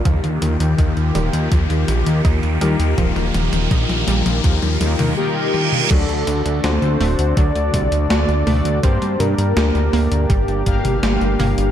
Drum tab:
CC |----------------|----------------|x---------------|----------------|
HH |xxxxxxxxxxxxxxxx|xxxxxxxxxxxx----|xxxxxxoxxxxxxxox|xxxxxxoxxxxxxxox|
SD |----------------|----------------|----o-------o---|----o-------o---|
T1 |----------------|--------------o-|----------------|----------------|
T2 |o-o-o-o-o-o-o-o-|oooooooooooo---o|----------o---o-|--o--------o--o-|
BD |o---o---o---o---|o---o---o-------|o-------o-o-----|o-------o-o-----|